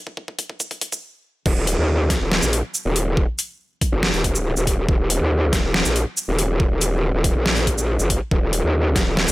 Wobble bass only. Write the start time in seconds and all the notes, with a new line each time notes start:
1.46 D#1
1.57 D#1
1.78 D#2
2.21 D#1
2.42 A#1
2.85 D#1
3.92 F#1
4.14 D#1
4.57 D#1
4.89 D#1
5.00 D#1
5.21 D#2
5.64 D#1
5.85 A#1
6.28 D#1
6.71 D#1
7.14 D#1
7.35 A#1
7.99 F#1
8.31 D#1
8.42 D#1
8.64 D#2
9.07 D#1
9.28 A#1